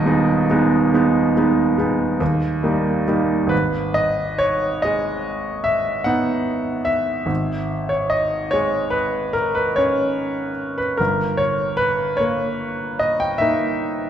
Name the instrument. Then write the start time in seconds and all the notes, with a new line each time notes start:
grand piano
Already playing: D#1 D#2 D#5
0.05 G#3 B3 D#4
0.51 G#3 B3 D#4
0.94 G#3 B3 D#4
1.37 G#3 B3 D#4
1.78 G#3 B3 D#4
2.20 D#2
2.63 G3 A#3 D#4
3.08 G3 A#3 D#4
3.47 G#1 B4
3.94 D#5
4.38 C#5
4.82 G#3 D#5
5.64 E5
6.04 B3 D#4 F#5
6.85 E5
7.26 G#1
7.89 C#5
8.10 D#5
8.51 G#3 C#5
8.90 B4
9.33 A#4
9.55 B4
9.76 C#4 C#5
10.78 B4
10.97 G1 A#4
11.37 C#5
11.77 B4
12.17 A#3 C#5
12.99 D#5
13.20 G5
13.38 A#3 D#4 E5